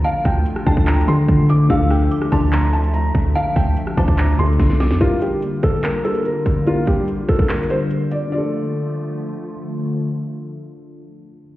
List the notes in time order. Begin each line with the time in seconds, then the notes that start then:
Already playing: D3 F3 A3 D4 F4 A4
0.04 F5 A5, closed hi-hat
0.25 D2 G5, kick, cross-stick, closed hi-hat
0.46 closed hi-hat
0.56 cross-stick
0.65 D2 D3 D4 F4 A4 G5 A5, kick, closed hi-hat
0.73 D2, kick, closed hi-hat
0.80 closed hi-hat
0.87 A#5, clap, closed hi-hat
0.94 closed hi-hat
1.01 closed hi-hat
1.06 D3 D4 F4 A4 C6, closed hi-hat
1.28 D3, kick, closed hi-hat
1.49 D6, closed hi-hat
1.68 D2 D3 D4 F4 A4 E5 F5 E6, kick, closed hi-hat
1.90 G5, cross-stick, open hi-hat
2.11 D6, closed hi-hat
2.22 cross-stick
2.31 D2 D3 D4 F4 A4 A5 C6, kick, closed hi-hat
2.53 A#5, clap, closed hi-hat
2.73 A5, closed hi-hat
2.84 closed hi-hat
2.94 A#5, closed hi-hat
3.15 D2, kick, closed hi-hat
3.35 F5 A5, closed hi-hat
3.56 D2 G5, kick, open hi-hat
3.77 closed hi-hat
3.87 cross-stick
3.96 D2 D3 D4 F4 C5 A5 D6, kick, closed hi-hat
4.08 D2, kick
4.18 A#5, clap, closed hi-hat
4.37 D2 D3 D4 F4 A4 C6, closed hi-hat
4.46 closed hi-hat
4.53 closed hi-hat
4.59 C2, kick, snare, closed hi-hat
4.70 snare
4.80 D6, snare, closed hi-hat
4.91 F2, snare
5.00 D3 G3 A#3 D4 F4 A#4, kick, closed hi-hat
5.22 G4, closed hi-hat
5.42 closed hi-hat
5.63 A4, kick, closed hi-hat
5.84 A#4, clap, closed hi-hat
6.03 G3 D4 F4 A4 A#4, closed hi-hat
6.15 closed hi-hat
6.25 A#4, closed hi-hat
6.46 kick, closed hi-hat
6.65 G3 D4 F4 A#4, closed hi-hat
6.87 G4, kick, closed hi-hat
7.08 closed hi-hat
7.27 G3 D4 F4 A4 A#4, kick, closed hi-hat
7.36 kick, closed hi-hat
7.42 closed hi-hat
7.49 A#4, clap, closed hi-hat
7.56 closed hi-hat
7.63 closed hi-hat
7.69 G3 D4 F4 A#4 C5, closed hi-hat
7.91 closed hi-hat
8.11 D5, closed hi-hat
8.26 D3 D4
8.32 D3 F3 A3 F4 D5
8.38 A4